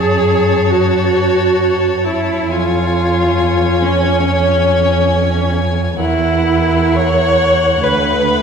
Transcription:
Already playing: F#2 G#4 C#5 A5
0.70 F#4
2.07 E4
2.49 F2 F4 C#5 G#5
3.82 C#4
4.24 C#4
6.00 E2 E4 A#4 F#5
6.97 C#5
7.83 D2 B4

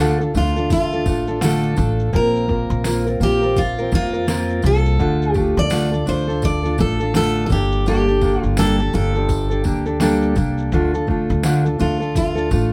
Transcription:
Already playing: D2
0.00 D3 A3 D4 F4 A4
0.20 D4 F4 A4, shaker
0.34 D2 A3 D4 F4 A4, tambourine
0.56 D4 F4 A4, shaker
0.70 F4, kick, tambourine, shaker
0.92 D4 F4 A4, shaker
1.06 A1 A3 D4 F4 A4, kick, tambourine
1.27 D4 F4 A4, shaker
1.41 D3 A3 D4 F4 A4, snare, tambourine, shaker
1.63 shaker
1.76 A1 A3 D4 F4 A4, kick, tambourine, shaker
1.99 shaker
2.13 A#1 A#3 C4 F4 A#4, kick, shaker
2.35 shaker
2.48 A#3 C4 F4 A#4, kick
2.70 A#1, shaker
2.84 A#3 C4 F4 A#4, snare, tambourine, shaker
3.06 C4 F4 A#4, shaker
3.20 A#1 A#3 C4 F4 G4 A#4, tambourine
3.42 C4 F4 A#4, shaker
3.56 F4, kick, tambourine, shaker
3.78 C4 F4 A#4, shaker
3.92 F2 A#3 C4 F4 A#4, kick, tambourine
4.13 C4 F4 A#4, shaker
4.27 A#3 C4 F4 A#4, snare, tambourine, shaker
4.49 shaker
4.62 C2 A#3 C4 F4 A4, tambourine, shaker
4.85 shaker
4.99 D2 D3 A3 D4 F4 A4, kick, shaker
5.22 shaker
5.34 A3 D4 F4 G4 A4, kick, tambourine
5.57 D2 D5, shaker
5.70 D3 A3 D4 F4 A4, snare, tambourine, shaker
5.91 D4 F4 A4, shaker
6.06 D2 A3 D4 F4 A4 C5, tambourine
6.28 D4 F4 A4, shaker
6.42 D5, kick, tambourine, shaker
6.63 D4 F4 A4, shaker
6.78 A1 A3 D4 F4 A4, kick, tambourine
7.00 D4 F4 A4, shaker
7.14 D3 A3 D4 F4 A4, snare, tambourine, shaker
7.35 shaker
7.46 A4, tambourine
7.50 G1 A#3 D4 G4 A4, kick, shaker
7.72 shaker
7.86 G3 A#3 D4 G4 A4, tambourine, shaker
8.08 D4 G4 A4, shaker
8.21 A#3 D4 G4 A4, kick, snare, tambourine
8.42 G1 F4, shaker
8.57 G3 A#3 D4 G4 A4, snare, tambourine, shaker
8.79 D4 G4 A4, shaker
8.93 G1 A#3 D4 G4 A4, tambourine, shaker
9.15 D4 G4 A4, shaker
9.29 kick, tambourine, shaker
9.50 D4 G4 A4, shaker
9.64 D2 A#3 D4 G4 A4, kick, tambourine
9.86 D4 G4 A4, shaker
10.00 G3 A#3 D4 G4 A4, snare, tambourine, shaker
10.22 shaker
10.35 C2 A#3 D4 G4 A4, kick, tambourine, shaker
10.58 shaker
10.72 D2 D3 A3 D4 F4 A4, kick, shaker
10.94 D4 F4 A4, shaker
11.07 A3 D4 F4 A4, kick
11.30 D2, shaker
11.43 D3 A3 D4 F4 A4, snare, tambourine, shaker
11.65 D4 F4 A4, shaker
11.79 D2 A3 D4 F4 A4, tambourine
12.00 D4 F4 A4, shaker
12.15 F4, kick, tambourine, shaker
12.35 D4 F4 A4, shaker
12.50 A1 A3 D4 F4 A4, kick, tambourine

